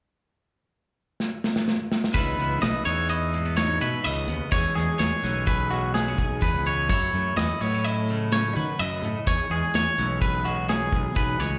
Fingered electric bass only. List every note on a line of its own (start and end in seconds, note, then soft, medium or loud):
2.14 2.36 C#2 medium
2.38 2.60 C#2 medium
2.62 2.73 B1 medium
2.86 3.77 E2 medium
3.82 3.92 B2 medium
4.05 4.27 C#2 medium
4.28 4.39 D#2 medium
4.52 4.63 E2 medium
4.76 4.87 E2 medium
5.00 5.11 E2 medium
5.23 6.14 B1 medium
6.18 6.40 B1 medium
6.42 6.53 E2 medium
6.54 6.87 C#2 medium
6.89 7.11 F#2 medium
7.13 7.36 F#2 medium
7.37 7.48 E2 medium
7.61 8.52 A2 medium
8.56 8.67 D#3 medium
8.79 9.01 F#2 medium
9.02 9.14 A2 medium
9.27 9.38 E2 medium
9.50 9.61 E2 medium
9.74 9.85 E2 medium
9.98 10.89 B1 medium
10.92 11.14 B1 medium
11.15 11.37 B1 medium
11.40 11.59 C#2 medium